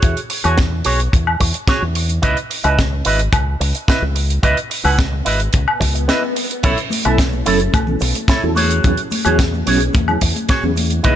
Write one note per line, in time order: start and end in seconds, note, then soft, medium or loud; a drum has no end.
0.00 0.14 E2 medium
0.00 0.19 F#4 medium
0.00 0.20 G#4 medium
0.00 0.20 C#5 loud
0.00 kick loud
0.00 closed hi-hat medium
0.17 closed hi-hat medium
0.30 muted clean electric guitar stroke soft
0.30 open hi-hat loud
0.44 0.81 E2 medium
0.44 0.58 F#4 medium
0.44 0.58 G#4 medium
0.44 0.58 C#5 medium
0.44 closed hi-hat medium
0.44 high woodblock medium
0.58 kick loud
0.58 snare loud
0.58 closed hi-hat medium
0.71 muted clean electric guitar stroke soft
0.84 1.07 B1 medium
0.84 0.99 F#4 medium
0.84 0.99 G#4 medium
0.84 1.00 C#5 medium
0.84 open hi-hat loud
1.00 closed hi-hat medium
1.12 1.34 E2 medium
1.12 muted clean electric guitar stroke soft
1.12 kick loud
1.12 closed hi-hat medium
1.27 high woodblock medium
1.40 1.51 E2 loud
1.40 muted clean electric guitar stroke loud
1.40 kick medium
1.40 open hi-hat loud
1.54 muted clean electric guitar stroke soft
1.54 closed hi-hat medium
1.68 1.82 F#4 medium
1.68 1.82 G#4 medium
1.68 1.82 C#5 loud
1.68 kick loud
1.68 snare loud
1.68 closed hi-hat medium
1.82 2.18 E2 medium
1.95 muted clean electric guitar stroke soft
1.95 open hi-hat loud
2.09 closed hi-hat medium
2.22 2.34 C#2 loud
2.22 2.37 E4 loud
2.22 2.37 B4 loud
2.22 2.37 D#5 loud
2.22 kick loud
2.22 closed hi-hat medium
2.37 closed hi-hat medium
2.50 muted clean electric guitar stroke soft
2.50 open hi-hat loud
2.64 3.01 C#2 loud
2.64 2.78 E4 medium
2.64 2.78 B4 medium
2.64 2.78 D#5 medium
2.64 closed hi-hat medium
2.64 high woodblock medium
2.79 kick loud
2.79 snare loud
2.79 closed hi-hat medium
2.92 muted clean electric guitar stroke soft
3.05 3.27 G#1 medium
3.05 3.19 E4 medium
3.05 3.20 B4 medium
3.05 3.20 D#5 loud
3.05 open hi-hat loud
3.19 closed hi-hat medium
3.33 3.54 C#2 medium
3.33 muted clean electric guitar stroke soft
3.33 kick loud
3.33 closed hi-hat medium
3.33 high woodblock medium
3.60 3.71 C#2 loud
3.60 muted clean electric guitar stroke loud
3.60 open hi-hat loud
3.74 muted clean electric guitar stroke soft
3.74 closed hi-hat medium
3.88 4.02 E4 medium
3.88 4.02 B4 medium
3.88 4.03 D#5 medium
3.88 kick loud
3.88 snare loud
3.88 closed hi-hat medium
4.02 4.38 C#2 medium
4.15 muted clean electric guitar stroke soft
4.15 open hi-hat medium
4.30 closed hi-hat medium
4.43 4.54 C#2 medium
4.43 4.57 E4 loud
4.43 4.57 B4 loud
4.43 4.58 D#5 loud
4.43 kick loud
4.43 closed hi-hat medium
4.57 closed hi-hat medium
4.70 muted clean electric guitar stroke soft
4.70 open hi-hat loud
4.84 5.21 C#2 loud
4.84 4.98 E4 medium
4.84 4.98 B4 medium
4.84 4.99 F#5 medium
4.84 open hi-hat medium
4.84 high woodblock medium
4.99 kick loud
4.99 snare loud
4.99 closed hi-hat medium
5.12 muted clean electric guitar stroke soft
5.25 5.47 G#1 medium
5.25 5.39 E4 medium
5.25 5.40 B4 medium
5.25 5.40 D#5 medium
5.25 open hi-hat loud
5.40 closed hi-hat medium
5.53 5.64 C#2 medium
5.53 muted clean electric guitar stroke soft
5.53 kick loud
5.53 closed hi-hat medium
5.53 swell medium
5.68 high woodblock medium
5.80 6.09 C#2 medium
5.80 muted clean electric guitar stroke loud
5.80 kick medium
5.80 snare soft
5.80 open hi-hat loud
5.94 muted clean electric guitar stroke soft
5.94 closed hi-hat medium
6.08 6.22 E4 medium
6.08 6.22 B4 medium
6.08 6.23 D#5 medium
6.08 snare loud
6.08 closed hi-hat medium
6.36 muted clean electric guitar stroke soft
6.36 open hi-hat loud
6.51 closed hi-hat medium
6.63 6.74 B1 loud
6.63 6.72 F#3 medium
6.63 6.72 B3 medium
6.63 6.72 C#4 medium
6.63 6.77 E4 loud
6.63 6.72 E4 medium
6.63 6.78 A4 loud
6.63 6.72 A4 medium
6.63 6.78 C#5 loud
6.63 kick loud
6.63 closed hi-hat medium
6.63 crash medium
6.63 shaker soft
6.77 closed hi-hat soft
6.77 shaker soft
6.90 muted clean electric guitar stroke soft
6.90 open hi-hat loud
6.90 high conga medium
6.90 shaker medium
7.05 7.41 B1 medium
7.05 7.17 F#3 medium
7.05 7.17 B3 medium
7.05 7.17 C#4 medium
7.05 7.19 E4 medium
7.05 7.18 E4 medium
7.05 7.19 A4 medium
7.05 7.18 A4 medium
7.05 7.19 E5 medium
7.05 closed hi-hat medium
7.05 high woodblock medium
7.05 shaker soft
7.18 kick loud
7.18 snare loud
7.18 closed hi-hat medium
7.18 shaker medium
7.32 muted clean electric guitar stroke soft
7.32 high conga medium
7.32 shaker soft
7.46 7.68 F#1 medium
7.46 7.59 F#3 medium
7.46 7.59 B3 medium
7.46 7.59 C#4 medium
7.46 7.60 E4 medium
7.46 7.59 E4 medium
7.46 7.60 A4 medium
7.46 7.59 A4 medium
7.46 7.60 C#5 medium
7.46 open hi-hat loud
7.46 shaker medium
7.60 closed hi-hat medium
7.60 shaker soft
7.73 7.95 B1 medium
7.73 muted clean electric guitar stroke soft
7.73 kick loud
7.73 closed hi-hat medium
7.73 high conga medium
7.73 high woodblock medium
7.73 shaker medium
7.87 7.95 F#3 medium
7.87 7.95 B3 medium
7.87 7.96 C#4 medium
7.87 7.96 E4 medium
7.87 7.96 A4 medium
7.87 low conga medium
7.87 shaker soft
8.00 8.12 B1 medium
8.00 muted clean electric guitar stroke loud
8.00 open hi-hat loud
8.00 shaker loud
8.14 muted clean electric guitar stroke soft
8.14 closed hi-hat medium
8.14 high conga medium
8.14 shaker soft
8.28 8.43 E4 medium
8.28 8.43 A4 medium
8.28 8.43 C#5 medium
8.28 kick loud
8.28 snare loud
8.28 closed hi-hat medium
8.28 shaker medium
8.42 8.79 E2 medium
8.42 8.50 F#3 medium
8.42 8.50 B3 medium
8.42 8.50 C#4 medium
8.42 8.51 E4 medium
8.42 8.51 A4 medium
8.42 shaker soft
8.56 9.00 F#4 medium
8.56 9.01 G#4 medium
8.56 9.01 C#5 medium
8.56 open hi-hat loud
8.56 high conga medium
8.56 shaker medium
8.70 closed hi-hat medium
8.70 shaker soft
8.84 8.95 E2 loud
8.84 8.92 F#3 medium
8.84 8.92 B3 medium
8.84 8.92 C#4 medium
8.84 8.92 E4 medium
8.84 8.92 G#4 medium
8.84 kick loud
8.84 closed hi-hat medium
8.84 shaker soft
8.97 closed hi-hat medium
8.97 shaker soft
9.11 muted clean electric guitar stroke soft
9.11 open hi-hat loud
9.11 high conga loud
9.11 shaker medium
9.25 9.62 E2 medium
9.25 9.37 F#3 medium
9.25 9.38 B3 medium
9.25 9.38 C#4 medium
9.25 9.38 E4 medium
9.25 9.39 F#4 medium
9.25 9.39 G#4 medium
9.25 9.38 G#4 medium
9.25 9.39 C#5 medium
9.25 closed hi-hat medium
9.25 high woodblock medium
9.25 shaker soft
9.39 kick loud
9.39 snare loud
9.39 closed hi-hat medium
9.39 shaker soft
9.53 muted clean electric guitar stroke soft
9.53 high conga medium
9.53 shaker soft
9.66 9.88 B1 medium
9.66 9.79 F#3 medium
9.66 9.79 B3 medium
9.66 9.79 C#4 medium
9.66 9.79 E4 medium
9.66 9.80 F#4 medium
9.66 9.80 G#4 medium
9.66 9.79 G#4 medium
9.66 9.81 C#5 medium
9.66 open hi-hat loud
9.66 shaker medium
9.80 closed hi-hat medium
9.80 shaker soft
9.93 10.15 E2 medium
9.93 muted clean electric guitar stroke soft
9.93 kick loud
9.93 closed hi-hat medium
9.93 high conga medium
9.93 shaker medium
10.07 10.15 F#3 medium
10.07 10.15 B3 medium
10.07 10.16 C#4 medium
10.07 10.16 E4 medium
10.07 10.16 G#4 medium
10.07 low conga medium
10.07 high woodblock medium
10.07 shaker soft
10.21 10.32 E2 loud
10.21 muted clean electric guitar stroke loud
10.21 kick medium
10.21 open hi-hat loud
10.21 shaker medium
10.35 muted clean electric guitar stroke soft
10.35 closed hi-hat medium
10.35 high conga medium
10.35 shaker soft
10.49 10.63 F#4 medium
10.49 10.63 G#4 medium
10.49 10.63 C#5 loud
10.49 kick loud
10.49 snare loud
10.49 closed hi-hat medium
10.49 shaker medium
10.62 10.99 E2 medium
10.62 10.71 F#3 medium
10.62 10.71 B3 medium
10.62 10.71 C#4 medium
10.62 10.71 E4 medium
10.62 10.71 G#4 loud
10.62 shaker soft
10.76 muted clean electric guitar stroke soft
10.76 open hi-hat loud
10.76 high conga medium
10.76 shaker medium
10.90 closed hi-hat medium
10.90 shaker soft
11.03 11.15 C#2 loud
11.03 11.12 E3 medium
11.03 11.12 B3 medium
11.03 11.12 C#4 medium
11.03 11.12 D#4 medium
11.03 11.16 E4 loud
11.03 11.12 G#4 medium
11.03 11.16 B4 loud
11.03 11.16 D#5 loud
11.03 kick loud
11.03 closed hi-hat medium
11.03 shaker medium